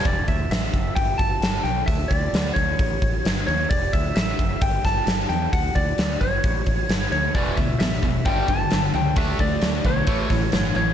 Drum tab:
HH |oooooooo|oooooooo|oooooooo|oooooooo|
SD |--o---o-|--o---o-|--o--oo-|--o---o-|
BD |oo-ooo--|oo-ooo--|oo-ooo--|oo-ooo--|

HH |oooooooo|oooooooo|
SD |--o---o-|--o--oo-|
BD |oo-ooo--|oo-ooo--|